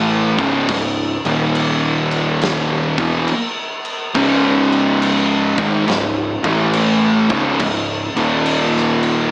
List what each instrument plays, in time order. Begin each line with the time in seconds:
Already playing: picked electric bass A1, distorted electric guitar A2 E3 A3
0.38 picked electric bass C#1, distorted electric guitar C#2 G#2 C#3, kick, crash
0.69 picked electric bass C#1, distorted electric guitar C#2 G#2, kick, crash
1.25 picked electric bass D#1, distorted electric guitar D#2 A#2 D#3, crash
1.55 crash
2.11 crash
2.41 snare, crash
2.98 picked electric bass E1, distorted electric guitar E2 B2 E3, kick, crash
3.28 crash
3.85 crash
4.15 picked electric bass C#1, distorted electric guitar C#2 G#2 C#3, kick, crash
4.72 crash
5.02 crash
5.57 picked electric bass G#1, distorted electric guitar G#2 D#3 G#3, kick, crash
5.87 picked electric bass C#1, distorted electric guitar C#2 G#2, snare, crash
6.43 picked electric bass A1, distorted electric guitar A2 E3 A3, kick, crash
6.73 crash
7.29 picked electric bass C#1, distorted electric guitar C#2 G#2 C#3, kick, crash
7.60 picked electric bass C#1, distorted electric guitar C#2 G#2, kick, crash
8.15 picked electric bass D#1, distorted electric guitar D#2 A#2 D#3, crash
8.46 crash
8.77 snare
9.03 crash